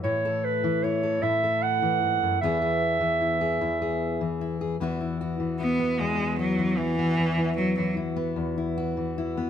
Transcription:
<<
  \new Staff \with { instrumentName = "Clarinet" } { \time 6/8 \key e \major \tempo 4. = 50 cis''8 b'8 cis''8 e''8 fis''4 | e''2~ e''8 r8 | r2. | r2. | }
  \new Staff \with { instrumentName = "Steel-string acoustic guitar" } { \time 6/8 \key e \major << { e'16 a'8. e'16 a'16 e'16 a'4~ a'16 | <e b e' gis'>16 gis'8. e'16 gis'16 e'16 gis'8. e'16 gis'16 | <e b e' fis'>16 e'16 fis'8 e'16 b8 e'16 fis'8 e'16 b16 | r16 e'16 fis'8 e'16 b8 e'16 fis'8 e'16 b16 | } \\ { <a, e>8. e8. a,8. e16 gis,16 fis,16 | e,8. e8. e,8. e8. | e,8. e8. e,8. e8. | e,8. e8. e,8. e8. | } >> }
  \new Staff \with { instrumentName = "Cello" } { \clef bass \time 6/8 \key e \major r2. | r2. | r4 b8 gis8 fis8 e8~ | e8 fis16 fis8 r4. r16 | }
>>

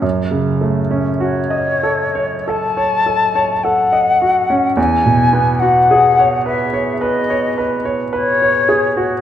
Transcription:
<<
  \new Staff \with { instrumentName = "Flute" } { \time 4/4 \key fis \dorian \tempo 4 = 53 r4 cis''4 a''4 fis''4 | gis''8. fis''8. e''8 dis''8. r16 cis''4 | }
  \new Staff \with { instrumentName = "Grand piano" } { \time 4/4 \key fis \dorian fis,16 cis16 a16 cis'16 fis'16 dis''16 a'16 cis''16 a'16 cis''16 a'16 cis''16 a'16 dis''16 fis'16 cis'16 | e,16 b,16 b16 fis'16 gis'16 cis''16 b'16 cis''16 b'16 cis''16 b'16 cis''16 b'16 cis''16 gis'16 fis'16 | }
>>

